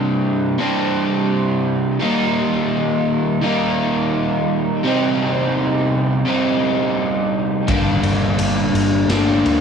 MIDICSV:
0, 0, Header, 1, 4, 480
1, 0, Start_track
1, 0, Tempo, 708885
1, 1366, Time_signature, 4, 2, 24, 8
1, 6504, End_track
2, 0, Start_track
2, 0, Title_t, "Overdriven electric guitar"
2, 0, Program_c, 0, 29
2, 0, Note_on_c, 0, 48, 75
2, 0, Note_on_c, 0, 55, 90
2, 0, Note_on_c, 0, 60, 85
2, 0, Note_on_c, 0, 62, 90
2, 388, Note_off_c, 0, 48, 0
2, 396, Note_off_c, 0, 62, 0
2, 397, Note_on_c, 0, 48, 81
2, 401, Note_off_c, 0, 55, 0
2, 404, Note_off_c, 0, 60, 0
2, 404, Note_on_c, 0, 55, 74
2, 406, Note_on_c, 0, 60, 76
2, 410, Note_on_c, 0, 62, 70
2, 1347, Note_off_c, 0, 48, 0
2, 1353, Note_on_c, 0, 51, 85
2, 1354, Note_off_c, 0, 62, 0
2, 1359, Note_off_c, 0, 55, 0
2, 1362, Note_on_c, 0, 55, 79
2, 1364, Note_off_c, 0, 60, 0
2, 1367, Note_on_c, 0, 58, 98
2, 1372, Note_on_c, 0, 63, 100
2, 2305, Note_off_c, 0, 51, 0
2, 2312, Note_off_c, 0, 58, 0
2, 2312, Note_on_c, 0, 51, 65
2, 2315, Note_off_c, 0, 55, 0
2, 2318, Note_on_c, 0, 55, 70
2, 2323, Note_on_c, 0, 58, 76
2, 2324, Note_off_c, 0, 63, 0
2, 2327, Note_on_c, 0, 63, 85
2, 3265, Note_off_c, 0, 51, 0
2, 3270, Note_off_c, 0, 58, 0
2, 3272, Note_off_c, 0, 63, 0
2, 3273, Note_on_c, 0, 48, 84
2, 3276, Note_off_c, 0, 55, 0
2, 3279, Note_on_c, 0, 55, 75
2, 3284, Note_on_c, 0, 60, 85
2, 3287, Note_on_c, 0, 63, 81
2, 4225, Note_off_c, 0, 48, 0
2, 4230, Note_off_c, 0, 60, 0
2, 4232, Note_off_c, 0, 63, 0
2, 4232, Note_on_c, 0, 48, 74
2, 4234, Note_off_c, 0, 55, 0
2, 4237, Note_on_c, 0, 55, 67
2, 4243, Note_on_c, 0, 60, 73
2, 4248, Note_on_c, 0, 63, 71
2, 5185, Note_off_c, 0, 48, 0
2, 5190, Note_off_c, 0, 60, 0
2, 5192, Note_off_c, 0, 63, 0
2, 5196, Note_on_c, 0, 43, 84
2, 5202, Note_on_c, 0, 50, 84
2, 5204, Note_off_c, 0, 55, 0
2, 5207, Note_on_c, 0, 55, 85
2, 5211, Note_on_c, 0, 58, 84
2, 5213, Note_on_c, 0, 62, 93
2, 6146, Note_off_c, 0, 43, 0
2, 6149, Note_off_c, 0, 50, 0
2, 6154, Note_off_c, 0, 58, 0
2, 6159, Note_on_c, 0, 43, 71
2, 6162, Note_off_c, 0, 55, 0
2, 6163, Note_on_c, 0, 50, 64
2, 6164, Note_on_c, 0, 55, 74
2, 6167, Note_on_c, 0, 58, 74
2, 6172, Note_off_c, 0, 62, 0
2, 6175, Note_on_c, 0, 62, 75
2, 6504, Note_off_c, 0, 43, 0
2, 6504, Note_off_c, 0, 50, 0
2, 6504, Note_off_c, 0, 55, 0
2, 6504, Note_off_c, 0, 58, 0
2, 6504, Note_off_c, 0, 62, 0
2, 6504, End_track
3, 0, Start_track
3, 0, Title_t, "Fingered electric bass"
3, 0, Program_c, 1, 33
3, 5198, Note_on_c, 1, 31, 83
3, 5420, Note_off_c, 1, 31, 0
3, 5439, Note_on_c, 1, 31, 84
3, 5661, Note_off_c, 1, 31, 0
3, 5682, Note_on_c, 1, 31, 80
3, 5902, Note_off_c, 1, 31, 0
3, 5919, Note_on_c, 1, 31, 94
3, 6140, Note_off_c, 1, 31, 0
3, 6156, Note_on_c, 1, 31, 95
3, 6379, Note_off_c, 1, 31, 0
3, 6398, Note_on_c, 1, 38, 80
3, 6504, Note_off_c, 1, 38, 0
3, 6504, End_track
4, 0, Start_track
4, 0, Title_t, "Drums"
4, 5201, Note_on_c, 9, 36, 119
4, 5201, Note_on_c, 9, 51, 102
4, 5269, Note_off_c, 9, 36, 0
4, 5269, Note_off_c, 9, 51, 0
4, 5440, Note_on_c, 9, 51, 66
4, 5508, Note_off_c, 9, 51, 0
4, 5678, Note_on_c, 9, 51, 85
4, 5746, Note_off_c, 9, 51, 0
4, 5925, Note_on_c, 9, 51, 60
4, 5993, Note_off_c, 9, 51, 0
4, 6159, Note_on_c, 9, 51, 87
4, 6162, Note_on_c, 9, 38, 112
4, 6227, Note_off_c, 9, 51, 0
4, 6230, Note_off_c, 9, 38, 0
4, 6404, Note_on_c, 9, 51, 63
4, 6471, Note_off_c, 9, 51, 0
4, 6504, End_track
0, 0, End_of_file